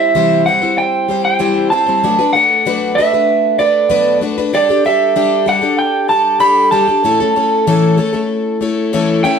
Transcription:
0.00 0.14 G3 medium
0.00 0.15 C4 soft
0.00 0.15 E4 medium
0.00 0.15 C5 medium
0.00 0.46 E5 medium
0.15 0.46 C3 medium
0.15 0.46 E3 medium
0.15 0.45 G3 medium
0.15 0.47 C4 medium
0.15 0.47 E4 medium
0.15 0.47 C5 medium
0.46 0.62 G3 medium
0.46 0.62 C4 medium
0.46 0.61 E4 medium
0.46 0.60 C5 medium
0.46 0.78 F#5 medium
0.62 1.07 G3 soft
0.62 1.08 C4 soft
0.62 1.09 E4 soft
0.62 1.08 C5 medium
0.78 1.21 G5 medium
1.08 1.39 G3 medium
1.08 1.39 C4 medium
1.08 1.39 E4 medium
1.08 1.40 C5 medium
1.25 1.70 G5 medium
1.39 1.71 C3 medium
1.39 1.71 E3 medium
1.39 1.70 G3 medium
1.39 1.71 C4 medium
1.39 1.71 E4 medium
1.39 1.71 C5 medium
1.70 1.87 G3 medium
1.70 1.87 C4 medium
1.70 1.87 E4 medium
1.70 1.85 C5 medium
1.70 2.33 A5 medium
1.87 2.03 G3 soft
1.87 2.03 C4 soft
1.87 2.03 E4 medium
1.87 2.02 C5 medium
2.03 2.18 B2 medium
2.03 2.18 F#3 medium
2.03 2.19 A3 medium
2.03 2.19 D4 medium
2.03 2.18 F#4 medium
2.03 2.18 B4 medium
2.19 2.34 A3 soft
2.19 2.34 D4 soft
2.19 2.34 F#4 soft
2.19 2.34 B4 medium
2.33 2.65 A3 medium
2.33 2.65 D4 medium
2.33 2.66 F#4 medium
2.33 2.98 F#5 medium
2.37 2.66 B4 medium
2.65 2.96 B2 medium
2.65 2.97 F#3 medium
2.65 2.97 A3 medium
2.65 2.97 D4 medium
2.65 2.97 F#4 medium
2.65 2.97 B4 medium
2.95 3.13 A3 medium
2.95 3.13 D4 medium
2.95 3.59 E5 loud
3.00 3.13 F#4 medium
3.00 3.12 B4 medium
3.13 3.57 A3 soft
3.13 3.58 D4 soft
3.13 3.59 F#4 soft
3.13 3.59 B4 soft
3.59 3.89 A3 medium
3.59 3.90 D4 medium
3.59 3.90 F#4 medium
3.59 3.90 B4 medium
3.59 4.17 D5 medium
3.90 4.21 B2 medium
3.90 4.21 F#3 medium
3.90 4.20 A3 medium
3.90 4.21 D4 medium
3.90 4.21 F#4 medium
3.90 4.22 B4 medium
4.21 4.37 A3 medium
4.21 4.37 D4 medium
4.21 4.37 F#4 medium
4.21 4.36 B4 medium
4.38 4.53 A3 soft
4.38 4.53 D4 soft
4.38 4.53 F#4 soft
4.38 4.53 B4 medium
4.53 4.68 G3 medium
4.53 4.69 D4 medium
4.53 4.69 G4 medium
4.53 4.68 A4 medium
4.53 4.85 D5 medium
4.69 4.84 D4 soft
4.69 4.84 G4 soft
4.69 4.84 A4 medium
4.85 5.15 G3 medium
4.85 5.15 D4 medium
4.85 5.15 G4 medium
4.85 5.16 A4 medium
4.85 5.49 E5 medium
5.16 5.45 G3 medium
5.16 5.46 D4 medium
5.16 5.46 G4 medium
5.16 5.47 A4 medium
5.46 5.62 G3 medium
5.46 5.62 D4 medium
5.46 5.61 G4 medium
5.46 5.60 A4 medium
5.46 5.78 F#5 loud
5.61 6.08 D4 soft
5.61 6.09 G4 soft
5.61 6.09 A4 medium
5.79 6.09 G5 loud
6.08 6.39 G3 medium
6.08 6.39 D4 medium
6.08 6.39 G4 medium
6.08 6.40 A4 medium
6.08 6.38 A5 loud
6.40 6.71 G3 medium
6.40 6.71 D4 medium
6.40 6.71 G4 medium
6.40 6.72 A4 loud
6.40 6.71 B5 loud
6.71 6.88 G3 medium
6.71 6.88 D4 medium
6.71 6.88 G4 medium
6.71 6.86 A4 medium
6.71 8.88 A5 medium
6.88 7.04 D4 soft
6.88 7.04 G4 soft
6.88 7.03 A4 medium
7.04 7.19 A2 medium
7.04 7.20 E3 medium
7.04 7.20 A3 medium
7.04 7.20 C#4 medium
7.04 7.20 E4 medium
7.04 7.19 A4 medium
7.20 7.35 A3 soft
7.20 7.35 C#4 soft
7.20 7.35 E4 medium
7.20 7.35 A4 medium
7.36 7.66 A3 medium
7.36 7.66 C#4 medium
7.36 7.66 E4 medium
7.36 7.67 A4 medium
7.67 7.98 A2 medium
7.67 7.98 E3 loud
7.67 7.96 A3 medium
7.67 7.97 C#4 medium
7.67 7.97 E4 loud
7.67 7.98 A4 medium
7.97 8.13 A3 medium
7.97 8.13 C#4 medium
7.97 8.12 E4 medium
7.97 8.12 A4 medium
8.13 8.60 A3 soft
8.13 8.61 C#4 soft
8.13 8.60 E4 soft
8.13 8.60 A4 medium
8.61 8.92 A3 medium
8.61 8.92 C#4 medium
8.61 8.93 E4 medium
8.61 8.93 A4 medium
8.93 9.24 A2 medium
8.93 9.24 E3 loud
8.93 9.23 A3 loud
8.93 9.23 C#4 medium
8.93 9.24 E4 medium
8.93 9.25 A4 loud
9.24 9.39 A3 medium
9.24 9.39 C#4 medium
9.24 9.39 E4 medium
9.24 9.39 A4 medium
9.24 9.39 G5 medium

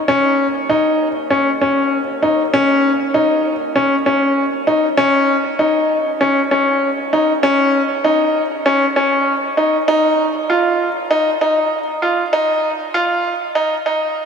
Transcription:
0.08 4.95 D#2 medium
0.08 0.45 C#4 medium
0.70 1.06 D#4 medium
1.31 1.49 C#4 medium
1.61 1.98 C#4 medium
2.23 2.41 D#4 medium
2.54 2.90 C#4 medium
3.14 3.51 D#4 medium
3.76 3.94 C#4 medium
4.06 4.43 C#4 medium
4.67 4.86 D#4 medium
4.97 9.85 C#2 medium
4.97 5.34 C#4 medium
5.59 5.96 D#4 medium
6.21 6.39 C#4 medium
6.51 6.88 C#4 medium
7.13 7.31 D#4 medium
7.43 7.80 C#4 medium
8.04 8.41 D#4 medium
8.66 8.84 C#4 medium
8.96 9.33 C#4 medium
9.57 9.76 D#4 medium
9.88 12.33 G#1 medium
9.88 10.25 D#4 loud
10.50 10.86 F4 medium
11.11 11.29 D#4 medium
11.41 11.78 D#4 medium
12.02 12.21 F4 medium
12.33 12.69 D#4 medium
12.94 13.31 F4 medium
13.55 13.74 D#4 medium
13.86 14.23 D#4 medium

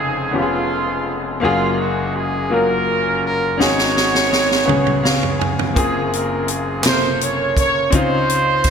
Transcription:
0.00 0.30 F1 medium
0.00 0.30 F2 medium
0.00 0.35 C#3 medium
0.00 0.31 C4 medium
0.00 0.31 C#4 medium
0.00 0.35 D#4 medium
0.00 0.35 F4 medium
0.00 0.35 G#4 medium
0.00 0.35 C5 medium
0.31 1.38 F1 medium
0.31 1.38 F2 medium
0.31 1.12 B3 medium
0.31 1.12 C#4 medium
0.31 1.13 F4 medium
0.31 1.16 F4 medium
0.35 1.39 G#3 medium
0.35 1.39 B3 medium
0.35 0.41 G4 medium
0.42 1.17 G#4 medium
1.40 3.56 F#1 medium
1.40 3.55 F#2 medium
1.40 2.22 F#3 medium
1.40 2.48 G#3 medium
1.40 2.20 A#3 medium
1.40 1.77 F4 medium
1.40 2.21 F5 medium
1.44 2.48 A#3 medium
1.44 2.23 G#4 medium
1.79 2.15 F#4 medium
2.16 2.51 G#4 medium
2.50 3.31 F#3 medium
2.50 3.29 A#3 medium
2.50 3.56 C#4 medium
2.50 3.30 F4 medium
2.50 3.56 F4 medium
2.50 3.24 A#4 medium
2.50 3.31 A#4 medium
3.26 3.58 A#4 medium
3.57 4.64 G#1 medium
3.57 4.64 G#2 medium
3.57 4.38 C#4 medium
3.57 4.38 D#4 medium
3.57 4.39 F#4 medium
3.57 5.37 F#4 medium
3.57 snare medium
3.62 4.40 G#4 medium
3.62 5.41 C#5 loud
3.78 snare soft
3.97 snare medium
4.15 snare medium
4.33 snare medium
4.51 snare medium
4.65 5.72 C#2 medium
4.65 5.72 C#3 medium
4.65 5.46 B3 medium
4.65 5.47 C#4 medium
4.65 5.47 G#4 medium
4.65 mid tom medium
4.87 mid tom medium
5.03 5.37 F5 medium
5.03 snare medium
5.23 floor tom medium
5.39 5.73 G#5 medium
5.39 floor tom medium
5.59 floor tom medium
5.74 7.89 F#1 medium
5.74 7.89 F#2 medium
5.74 6.54 A#3 medium
5.74 6.55 C4 medium
5.74 6.81 C4 medium
5.74 6.56 F4 medium
5.74 6.81 F4 medium
5.74 6.11 G#4 medium
5.74 6.56 G#4 medium
5.74 kick medium
5.74 closed hi-hat medium
6.13 6.49 A#4 medium
6.13 closed hi-hat soft
6.48 6.86 G#4 medium
6.48 closed hi-hat medium
6.82 7.63 C3 medium
6.82 7.62 A#3 medium
6.82 7.64 F4 medium
6.82 clap medium
6.82 closed hi-hat medium
6.86 6.92 A4 medium
6.86 7.20 C5 medium
6.86 snare loud
6.92 7.67 A#4 medium
7.21 7.58 C#5 medium
7.21 closed hi-hat medium
7.57 7.92 C#5 loud
7.57 kick medium
7.57 closed hi-hat medium
7.90 8.70 C#2 medium
7.90 8.70 C#3 medium
7.90 8.70 C4 medium
7.90 8.70 C#4 medium
7.90 8.70 D#4 medium
7.90 8.70 F4 medium
7.90 kick medium
7.90 closed hi-hat medium
7.95 8.70 F4 medium
7.95 8.70 C5 loud
8.30 closed hi-hat soft
8.64 kick medium
8.64 snare soft
8.64 closed hi-hat medium

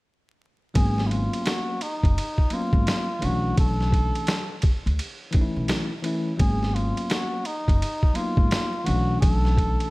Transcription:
0.74 1.26 G#1 medium
0.74 1.78 F#3 medium
0.74 1.78 A#3 medium
0.74 1.79 B3 medium
0.74 1.80 C#4 medium
0.74 1.08 G#4 medium
0.74 kick loud
0.74 ride medium
0.98 snare soft
1.06 1.12 E4 medium
1.11 1.48 F4 medium
1.11 ride soft
1.33 ride soft
1.46 1.84 F#4 medium
1.46 snare medium
1.46 hi-hat pedal soft
1.46 ride medium
1.81 2.55 D#4 medium
1.81 ride medium
2.03 2.15 F#1 medium
2.03 kick medium
2.03 ride soft
2.18 ride medium
2.38 kick medium
2.50 3.06 F#3 medium
2.50 3.07 A#3 medium
2.50 3.07 B3 medium
2.50 3.08 C#4 medium
2.50 3.26 F4 medium
2.50 ride medium
2.73 2.85 G#1 medium
2.73 kick medium
2.87 snare medium
2.87 hi-hat pedal soft
2.87 ride medium
3.19 3.53 B1 medium
3.19 4.36 E3 medium
3.19 4.36 A3 medium
3.19 4.37 C#4 medium
3.19 4.37 D4 medium
3.19 ride medium
3.25 3.59 F#4 medium
3.57 4.08 B1 medium
3.57 4.60 A4 loud
3.57 kick loud
3.57 ride medium
3.81 snare soft
3.92 kick medium
3.92 ride soft
4.15 ride soft
4.27 snare loud
4.27 hi-hat pedal soft
4.27 ride medium
4.62 kick medium
4.62 ride medium
4.86 4.97 D2 medium
4.86 ride soft
4.99 ride medium
5.31 5.88 E3 medium
5.31 5.89 A3 medium
5.31 5.89 C#4 medium
5.31 kick medium
5.31 ride medium
5.35 5.43 D#4 medium
5.41 5.93 E4 medium
5.56 5.68 B1 medium
5.68 snare loud
5.68 hi-hat pedal soft
5.68 ride medium
6.02 6.32 E3 medium
6.02 6.32 A3 medium
6.02 6.33 C#4 medium
6.02 6.33 E4 medium
6.02 ride medium
6.37 6.90 G#1 loud
6.37 7.42 F#3 medium
6.37 7.43 A#3 medium
6.37 7.43 B3 medium
6.37 7.44 C#4 medium
6.37 6.76 G#4 medium
6.37 kick loud
6.37 ride medium
6.63 snare soft
6.75 7.12 F4 medium
6.75 ride soft
6.97 ride soft
7.10 7.47 F#4 medium
7.10 snare medium
7.10 hi-hat pedal soft
7.10 ride medium
7.45 8.17 D#4 medium
7.45 ride soft
7.68 7.80 F#1 medium
7.68 kick medium
7.68 ride soft
7.82 ride medium
8.03 kick medium
8.13 8.70 F#3 medium
8.13 8.71 A#3 medium
8.13 8.72 B3 medium
8.13 8.72 D#4 medium
8.13 8.87 F4 medium
8.13 ride medium
8.37 8.49 G#1 medium
8.37 kick medium
8.51 snare loud
8.51 hi-hat pedal soft
8.51 ride medium
8.84 9.18 B1 medium
8.84 9.90 E3 medium
8.84 9.90 A3 medium
8.84 9.90 C#4 medium
8.84 9.90 D4 medium
8.84 9.20 F#4 medium
8.84 ride medium
9.21 9.73 B1 medium
9.21 9.90 A4 medium
9.21 kick loud
9.21 ride medium
9.45 snare soft
9.57 kick medium
9.57 ride soft
9.80 ride soft

